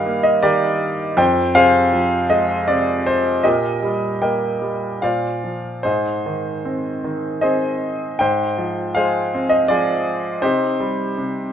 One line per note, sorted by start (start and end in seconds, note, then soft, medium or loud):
0.00 1.14 G2 medium
0.00 0.41 D#3 soft
0.00 1.14 G3 medium
0.00 0.43 A#4 medium
0.00 0.23 D#5 medium
0.00 0.21 F5 medium
0.00 1.18 G5 medium
0.06 1.15 A#3 soft
0.23 0.43 D#5 medium
0.43 1.16 D#3 soft
0.43 1.14 G4 medium
0.43 1.14 A#4 medium
0.43 0.95 D5 medium
1.17 3.41 F2 medium
1.17 1.54 C5 medium
1.17 1.56 G5 loud
1.55 2.67 C3 medium
1.55 2.66 G#4 medium
1.55 2.65 C5 medium
1.55 2.33 F5 loud
1.93 3.42 F3 medium
2.30 3.42 G#3 soft
2.30 2.70 D#5 medium
2.68 3.43 C3 soft
2.68 3.08 D5 medium
3.06 3.42 C5 medium
3.43 4.98 A#2 medium
3.43 4.57 G4 medium
3.43 4.21 A#4 medium
3.43 4.17 D#5 medium
3.83 4.60 G3 soft
4.22 5.00 A#3 soft
4.22 4.99 A#4 soft
4.22 4.99 D#5 soft
4.22 5.05 G5 medium
4.62 5.01 G3 soft
5.02 5.82 A#2 soft
5.02 5.81 C5 soft
5.02 5.81 D5 soft
5.02 5.60 F5 medium
5.44 5.84 F3 soft
5.83 8.16 G#2 soft
5.83 7.40 D#4 soft
5.83 7.39 G#4 soft
5.83 7.41 C5 medium
6.26 7.03 D#3 soft
6.65 7.42 C4 soft
7.04 8.17 D#3 soft
7.41 8.18 C4 soft
7.41 8.16 G#4 medium
7.41 8.16 C5 medium
7.41 8.22 D#5 medium
8.19 10.39 G#2 medium
8.19 8.95 C5 medium
8.19 8.97 G5 medium
8.58 9.69 F3 soft
8.95 10.39 G#3 medium
8.95 9.69 G#4 medium
8.95 10.03 C5 medium
8.95 9.53 F5 medium
9.35 10.40 C4 soft
9.49 9.69 D#5 medium
9.68 10.41 F3 soft
9.68 10.39 F4 medium
9.68 10.39 G#4 medium
9.68 10.20 D5 medium
10.42 11.17 C3 medium
10.42 11.53 D#4 medium
10.42 11.53 G4 medium
10.42 11.53 C5 medium
10.80 11.53 G3 soft
11.18 11.53 C3 soft